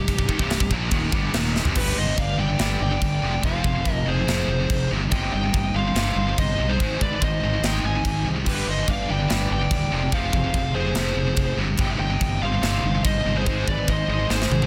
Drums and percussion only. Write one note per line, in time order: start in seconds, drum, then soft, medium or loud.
0.08 kick medium
0.08 crash medium
0.19 kick medium
0.29 kick medium
0.39 kick medium
0.50 snare loud
0.50 crash medium
0.60 kick loud
0.71 kick medium
0.91 kick loud
0.91 crash medium
1.12 kick loud
1.34 snare loud
1.34 crash medium
1.56 snare medium
1.65 floor tom medium
1.75 kick loud
1.75 crash loud
1.75 china medium
2.18 kick medium
2.18 china medium
2.59 snare loud
2.59 china medium
3.02 kick loud
3.02 china medium
3.43 kick loud
3.43 china medium
3.64 kick medium
3.85 kick medium
3.85 china medium
4.28 snare loud
4.28 china medium
4.70 kick loud
4.70 china medium
5.11 kick loud
5.11 china medium
5.54 kick medium
5.54 china medium
5.96 snare loud
5.96 china medium
6.38 kick loud
6.38 china medium
6.80 kick loud
6.80 china medium
7.01 kick loud
7.22 kick medium
7.22 china medium
7.63 snare loud
7.63 china medium
8.05 kick medium
8.05 china medium
8.46 kick loud
8.46 crash loud
8.46 china medium
8.88 kick medium
8.88 china medium
9.30 snare loud
9.30 china medium
9.71 kick loud
9.71 china medium
10.12 kick loud
10.12 china medium
10.33 kick medium
10.54 kick medium
10.54 china medium
10.95 snare loud
10.95 china medium
11.36 kick loud
11.36 china medium
11.77 kick loud
11.77 china medium
12.21 kick medium
12.21 china medium
12.63 snare loud
12.63 china medium
13.05 kick medium
13.05 china medium
13.46 kick loud
13.46 china medium
13.68 kick medium
13.88 kick medium
13.88 china medium
14.30 snare medium
14.42 snare medium
14.52 high tom medium
14.62 high tom medium